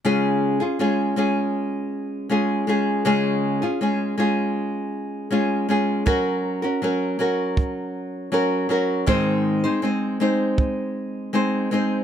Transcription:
<<
  \new Staff \with { instrumentName = "Nylon-string guitar" } { \time 4/4 \key des \major \tempo 4 = 80 <des aes des' f' aes'>8. <des' f' aes'>16 <aes des' f' aes'>8 <aes des' f' aes'>4. <aes des' f' aes'>8 <aes des' f' aes'>8 | <des aes des' f' aes'>8. <des' f' aes'>16 <aes des' f' aes'>8 <aes des' f' aes'>4. <aes des' f' aes'>8 <aes des' f' aes'>8 | <ges des' ges' bes'>8. <des' ges' bes'>16 <ges des' ges' bes'>8 <ges des' ges' bes'>4. <ges des' ges' bes'>8 <ges des' ges' bes'>8 | <aes, ees aes c' ees' c''>8. <aes c' ees' c''>16 <aes c' ees' c''>8 <aes c' ees' c''>4. <aes c' ees' c''>8 <aes c' ees' c''>8 | }
  \new DrumStaff \with { instrumentName = "Drums" } \drummode { \time 4/4 r4 r4 r4 r4 | r4 r4 r4 r4 | bd4 r4 bd4 r4 | bd4 r4 bd4 r4 | }
>>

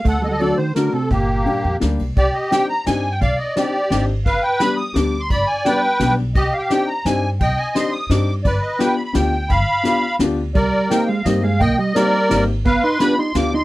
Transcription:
<<
  \new Staff \with { instrumentName = "Accordion" } { \time 3/4 \key g \minor \tempo 4 = 172 << { fis''8 ees''32 fis''32 ees''16 d''8 c''8 bes'8 a'8 | g'2 r4 | \key c \minor d''8 ees''8 g''8 bes''8 aes''8. g''16 | f''8 ees''8 d''4. r8 |
f''8 g''8 b''8 ees'''8 d'''8. c'''16 | b''8 aes''8 g''4. r8 | ees''8 f''32 g''32 f''16 g''8 bes''8 aes''8. r16 | g''8 aes''8 c'''8 ees'''8 d'''8. r16 |
d''8 ees''8 g''8 b''16 b''16 g''4 | b''2 r4 | d''4 g''8 f''8 ees''8 f''8 | g''8 ees''8 d''4. r8 |
f''8 c'''8 b''8 c'''8 d'''8 c'''8 | } \\ { a'4. r4. | bes2 r4 | g'4. r4. | d''4 g'4. r8 |
b'4. r4. | d''4 b'4. r8 | g'4. r4. | ees''4. r4. |
b'4. r4. | f''2 r4 | bes'4. r4. | ees''4 bes'4. r8 |
b'4. r4. | } >> }
  \new Staff \with { instrumentName = "Upright piano" } { \time 3/4 \key g \minor r4 <fis a d' fis'>8 r8 <fis a d' fis'>8 r8 | r4 <g bes d' g'>8 r8 <g bes d' g'>8 r8 | \key c \minor r4 <c' d' ees' g'>8 r8 <c' d' ees' g'>8 r8 | r4 <c' d' ees' g'>8 r8 <c' d' ees' g'>8 r8 |
r4 <g b d' g'>8 r8 <g b d' g'>8 r8 | r4 <g b d' g'>8 r8 <g b d' g'>8 r8 | r4 <c' d' ees' g'>8 r8 <c' d' ees' g'>8 r8 | r4 <c' d' ees' g'>8 r8 <c' d' ees' g'>8 r8 |
r4 <b d' f' g'>8 r8 <b d' f' g'>8 r8 | r4 <b d' f' g'>8 r8 <b d' f' g'>8 r8 | r4 <bes c' ees' g'>8 r8 <bes c' ees' g'>8 r8 | r4 <bes c' ees' g'>8 r8 <bes c' ees' g'>8 r8 |
r4 <b d' f' g'>8 r8 <b d' f' g'>8 r8 | }
  \new Staff \with { instrumentName = "Hollow-body jazz guitar" } { \clef bass \time 3/4 \key g \minor a8 g32 a32 g16 fis8 ees8 d8 c8 | bes,2 r4 | \key c \minor r2. | r2. |
r2. | r2. | r2. | r2. |
r2. | r2. | g4 bes8 aes8 g8 aes8 | bes8 g8 g4. r8 |
b8 ees'8 d'8 ees'8 f'8 ees'8 | }
  \new Staff \with { instrumentName = "Upright bass" } { \clef bass \time 3/4 \key g \minor d,2 r4 | g,,4. f,8 d,8 c,8 | \key c \minor c,8 r4. g,4 | c,8 r4. aes,,4 |
g,,8 r4. d,4 | g,,8 r4. b,,4 | c,8 r4. g,4 | c,8 r4. g,4 |
g,,8 r4. d,4 | g,,8 r4. d,4 | c,8 r4. g,4 | c,8 r4. aes,,4 |
g,,8 r4. d,4 | }
  \new DrumStaff \with { instrumentName = "Drums" } \drummode { \time 3/4 <bd cymr>4 cymr4 <cymr sn>4 | <bd cymr>4 cymr4 <cymr sn>8 cymr8 | <bd cymr>4 <cymr sn>4 <cymr sn>4 | <bd cymr>4 <cymr sn>4 <cymr sn>4 |
<bd cymr>4 <cymr sn>4 <cymr sn>4 | <bd cymr>4 <cymr sn>4 <cymr sn>4 | <bd cymr>4 <cymr sn>4 <cymr sn>4 | <bd cymr>4 <cymr sn>4 <cymr sn>4 |
<bd cymr>4 <cymr sn>4 <cymr sn>4 | <bd cymr>4 <cymr sn>4 <cymr sn>4 | <bd cymr>4 <cymr sn>4 <cymr sn>4 | <bd cymr>4 <cymr sn>4 <cymr sn>4 |
<bd cymr>4 <cymr sn>4 <cymr sn>4 | }
>>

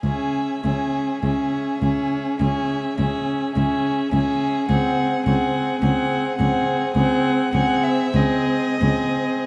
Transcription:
<<
  \new Staff \with { instrumentName = "Violin" } { \time 4/4 \key cis \minor \tempo 4 = 52 e''8 e''8 e''8 e''8 e''8 e''8 e''8 e''8 | fis''8 fis''8 fis''8 fis''8 fis''8 fis''16 e''16 dis''4 | }
  \new Staff \with { instrumentName = "Violin" } { \time 4/4 \key cis \minor gis'8 gis'8 gis'8 gis'8 gis'8 gis'8 gis'8 gis'8 | gis'8 gis'8 gis'8 gis'8 gis'8 gis'8 gis'8 gis'8 | }
  \new Staff \with { instrumentName = "Viola" } { \time 4/4 \key cis \minor cis'8 cis'8 cis'8 cis'8 cis'8 cis'8 cis'8 cis'8 | bis8 bis8 bis8 bis8 bis8 bis8 bis8 bis8 | }
  \new Staff \with { instrumentName = "Cello" } { \clef bass \time 4/4 \key cis \minor cis,8 cis,8 cis,8 cis,8 cis,8 cis,8 cis,8 cis,8 | cis,8 cis,8 cis,8 cis,8 cis,8 cis,8 cis,8 cis,8 | }
>>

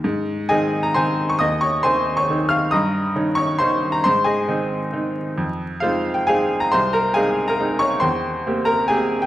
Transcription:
\new Staff \with { instrumentName = "Grand piano" } { \time 3/4 \key aes \major \tempo 4 = 135 << { r4 <aes' ees'' aes''>8. bes''16 <c'' aes'' c'''>8. des'''16 | <ees'' ees'''>8 <des'' des'''>8 <c'' aes'' c'''>8. <des'' des'''>8. <f'' f'''>8 | <ees'' bes'' ees'''>4. <des'' des'''>8 <c'' c'''>8. bes''16 | <c'' c'''>8 <aes' ees'' aes''>2 r8 |
r4 <f' c'' f''>8. g''16 <aes' f'' aes''>8. bes''16 | <c'' c'''>8 <bes' bes''>8 <aes' f'' aes''>8. <bes' bes''>8. <des'' des'''>8 | <c'' g'' c'''>4. <bes' bes''>8 <aes' aes''>8. g''16 | } \\ { aes,4 <ees c' ees'>4 <ees c' ees'>4 | ees,4 <ees c' ees'>4 <ees c' ees'>4 | g,4 <ees des' ees'>4 <ees des' ees'>4 | aes,4 <ees c' ees'>4 <ees c' ees'>4 |
f,4 <aes c' ees'>4 <aes c' ees'>4 | c,4 <aes c' ees'>4 <aes c' ees'>4 | e,4 <bes c' g'>4 <bes c' g'>4 | } >> }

